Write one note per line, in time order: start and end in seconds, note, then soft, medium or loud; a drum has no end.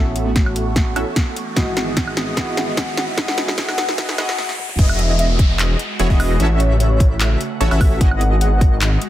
0.00 0.94 A1 medium
0.00 0.23 E3 medium
0.00 0.23 A3 medium
0.00 0.24 B3 medium
0.00 0.24 C#4 medium
0.00 0.94 C#4 loud
0.00 0.94 E4 medium
0.00 0.24 F#4 medium
0.00 0.94 F#4 medium
0.00 0.94 A4 medium
0.00 1.55 A4 medium
0.00 0.32 C#5 loud
0.00 0.94 E5 loud
0.00 1.55 F#5 medium
0.00 1.55 C#6 medium
0.00 riser medium
0.16 closed hi-hat medium
0.24 1.53 E3 medium
0.24 1.54 A3 medium
0.24 1.54 B3 medium
0.24 1.55 C#4 medium
0.24 1.55 F#4 medium
0.36 0.63 C#5 loud
0.36 kick loud
0.36 snare medium
0.36 closed hi-hat medium
0.46 high woodblock medium
0.56 closed hi-hat medium
0.76 kick loud
0.76 snare medium
0.76 closed hi-hat medium
0.96 1.03 A1 medium
0.96 1.05 C#4 loud
0.96 1.05 E4 medium
0.96 1.05 F#4 medium
0.96 1.05 A4 medium
0.96 1.05 E5 loud
0.96 closed hi-hat medium
0.96 high woodblock medium
1.16 kick loud
1.16 snare medium
1.16 closed hi-hat medium
1.36 closed hi-hat medium
1.56 2.35 G#1 loud
1.56 1.84 E3 medium
1.56 1.85 G#3 medium
1.56 1.85 B3 medium
1.56 2.36 B3 medium
1.56 1.85 D#4 medium
1.56 2.36 E4 medium
1.56 2.36 F#4 medium
1.56 1.85 F#4 medium
1.56 3.16 G#4 medium
1.56 2.36 G#4 medium
1.56 2.36 D#5 loud
1.56 3.16 F#5 medium
1.56 1.93 F#5 loud
1.56 3.16 D#6 medium
1.56 kick loud
1.56 snare medium
1.56 closed hi-hat medium
1.77 snare medium
1.77 closed hi-hat medium
1.85 2.34 E3 medium
1.85 2.35 G#3 medium
1.85 2.36 B3 medium
1.85 2.36 D#5 medium
1.89 2.37 F#4 medium
1.97 2.24 F#5 medium
1.97 kick loud
1.97 snare medium
1.97 closed hi-hat medium
2.08 high woodblock medium
2.17 snare medium
2.17 closed hi-hat medium
2.36 3.16 G#1 loud
2.36 2.64 E3 medium
2.36 2.65 G#3 medium
2.36 2.65 B3 medium
2.36 3.16 B3 medium
2.36 2.65 D#4 medium
2.36 3.16 E4 medium
2.36 3.16 F#4 medium
2.36 2.66 F#4 medium
2.36 3.16 G#4 medium
2.36 3.16 D#5 loud
2.36 2.73 F#5 loud
2.36 kick loud
2.36 snare medium
2.36 closed hi-hat medium
2.57 snare medium
2.57 closed hi-hat medium
2.66 3.15 E3 medium
2.66 3.15 G#3 medium
2.66 3.16 B3 medium
2.66 3.17 D#5 medium
2.70 3.17 F#4 medium
2.77 3.05 F#5 medium
2.77 kick loud
2.77 snare medium
2.77 closed hi-hat medium
2.97 snare medium
2.97 closed hi-hat medium
3.17 3.56 B1 loud
3.17 3.45 E3 medium
3.17 3.46 G#3 medium
3.17 3.46 B3 medium
3.17 3.56 B3 medium
3.17 3.46 D#4 medium
3.17 3.56 E4 medium
3.17 3.56 F#4 medium
3.17 3.46 F#4 medium
3.17 3.56 G#4 medium
3.17 4.37 B4 medium
3.17 3.56 D#5 loud
3.17 3.54 F#5 loud
3.17 kick medium
3.17 snare medium
3.17 closed hi-hat medium
3.28 snare medium
3.38 snare medium
3.38 closed hi-hat medium
3.46 3.55 E3 medium
3.46 3.56 G#3 medium
3.46 3.56 B3 medium
3.46 3.57 D#4 medium
3.46 snare medium
3.50 3.57 F#4 medium
3.57 3.96 B1 loud
3.57 3.85 E3 medium
3.57 3.86 G#3 medium
3.57 3.86 B3 medium
3.57 3.97 B3 medium
3.57 3.86 D#4 medium
3.57 3.97 E4 medium
3.57 3.97 F#4 medium
3.57 3.86 F#4 medium
3.57 3.97 G#4 medium
3.57 3.97 D#5 loud
3.57 3.94 F#5 loud
3.57 kick loud
3.57 snare loud
3.57 closed hi-hat medium
3.69 snare medium
3.69 high woodblock medium
3.78 snare loud
3.78 closed hi-hat medium
3.86 3.95 E3 medium
3.86 3.96 G#3 medium
3.86 3.97 B3 medium
3.86 3.97 D#4 medium
3.86 snare medium
3.90 3.98 F#4 medium
3.97 4.16 B1 loud
3.97 4.16 E3 medium
3.97 4.16 G#3 medium
3.97 4.17 B3 loud
3.97 4.17 D#4 medium
3.97 4.17 E4 medium
3.97 4.17 F#4 medium
3.97 4.17 G#4 medium
3.97 4.17 D#5 loud
3.97 4.17 F#5 loud
3.97 kick loud
3.97 snare loud
3.97 closed hi-hat medium
4.09 snare medium
4.17 4.37 B1 loud
4.17 4.36 E3 medium
4.17 4.37 G#3 medium
4.17 4.37 B3 medium
4.17 4.37 B3 loud
4.17 4.37 D#4 medium
4.17 4.37 E4 medium
4.17 4.37 F#4 medium
4.17 4.37 G#4 medium
4.17 4.37 D#5 loud
4.17 4.37 F#5 loud
4.17 snare loud
4.17 closed hi-hat medium
4.17 high woodblock medium
4.29 snare loud
4.38 snare medium
4.49 snare medium
4.59 mid tom medium
4.69 mid tom medium
4.79 5.75 E1 loud
4.79 6.38 G#3 medium
4.79 5.77 B3 loud
4.79 5.77 E4 medium
4.79 5.77 F#4 medium
4.79 9.09 F#4 medium
4.79 5.77 G#4 medium
4.79 5.77 D#5 loud
4.79 5.15 E5 loud
4.79 kick loud
4.79 closed hi-hat medium
4.79 crash loud
4.79 downlifter medium
4.89 high woodblock medium
4.99 closed hi-hat medium
5.19 5.46 E5 loud
5.19 closed hi-hat medium
5.39 kick loud
5.39 closed hi-hat medium
5.59 clap loud
5.59 closed hi-hat medium
5.79 closed hi-hat medium
6.00 6.08 E1 loud
6.00 6.08 B3 medium
6.00 6.08 E4 medium
6.00 6.08 F#4 medium
6.00 6.08 G#4 medium
6.00 6.08 C#5 loud
6.00 closed hi-hat medium
6.10 6.38 E1 loud
6.10 6.37 B3 medium
6.10 6.37 E4 medium
6.10 6.37 F#4 medium
6.10 6.37 G#4 medium
6.10 6.37 D#5 loud
6.10 kick medium
6.20 open hi-hat medium
6.20 high woodblock medium
6.40 7.36 A1 loud
6.40 7.99 C#3 medium
6.40 7.99 A3 medium
6.40 7.38 C#4 loud
6.40 7.38 E4 medium
6.40 7.38 F#4 medium
6.40 7.38 A4 medium
6.40 6.76 C#5 loud
6.40 7.38 E5 loud
6.40 closed hi-hat medium
6.60 closed hi-hat medium
6.80 7.08 C#5 loud
6.80 closed hi-hat medium
7.00 kick loud
7.00 closed hi-hat medium
7.20 clap loud
7.20 closed hi-hat medium
7.41 closed hi-hat medium
7.61 7.69 A1 loud
7.61 7.69 C#4 loud
7.61 7.69 E4 medium
7.61 7.69 F#4 medium
7.61 7.69 A4 medium
7.61 7.69 C#5 loud
7.61 closed hi-hat medium
7.71 8.02 A1 loud
7.71 7.99 C#4 medium
7.71 7.99 E4 medium
7.71 7.99 F#4 medium
7.71 7.99 A4 medium
7.71 7.99 E5 loud
7.71 high woodblock medium
7.81 kick loud
7.81 open hi-hat medium
7.81 high woodblock medium
8.01 8.97 G#1 loud
8.01 9.09 G#3 medium
8.01 8.99 B3 loud
8.01 8.99 E4 medium
8.01 8.99 F#4 medium
8.01 8.99 G#4 medium
8.01 8.99 D#5 loud
8.01 8.37 F#5 loud
8.01 kick loud
8.01 closed hi-hat medium
8.11 high woodblock medium
8.21 closed hi-hat medium
8.41 8.69 F#5 loud
8.41 closed hi-hat medium
8.61 kick loud
8.61 closed hi-hat medium
8.81 clap loud
8.81 closed hi-hat medium
9.02 closed hi-hat medium